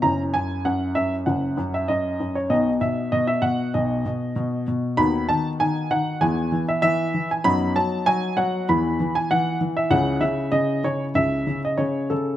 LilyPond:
<<
  \new Staff \with { instrumentName = "Grand piano" } { \time 4/4 \key b \major \tempo 4 = 97 << { ais''8 gis''8 fis''8 e''8 fis''8. e''16 dis''8. cis''16 | dis''8 e''8 dis''16 e''16 fis''8 dis''4. r8 | \key e \major b''8 a''8 gis''8 fis''8 gis''8. e''16 e''8. gis''16 | b''8 a''8 gis''8 fis''8 b''8. gis''16 fis''8. e''16 |
fis''8 e''8 dis''8 cis''8 e''8. dis''16 cis''8 a'8 | } \\ { <cis' e'>1 | <b dis'>1 | <b fis'>2 <b e'>2 | <b dis'>2 <b e'>2 |
<cis' e'>1 | } >> }
  \new Staff \with { instrumentName = "Grand piano" } { \clef bass \time 4/4 \key b \major <fis,, fis,>8 fis,8 fis,8 fis,8 <fis,, fis,>8 fis,8 fis,8 fis,8 | <b,, b,>8 b,8 b,8 b,8 <b,, b,>8 b,8 b,8 b,8 | \key e \major <dis, dis>8 dis8 dis8 dis8 <e, e>8 e8 e8 e8 | <fis, fis>8 fis8 fis8 fis8 <e, e>8 e8 e8 e8 |
<cis, cis>8 cis8 cis8 cis8 <cis, cis>8 cis8 cis8 cis8 | }
>>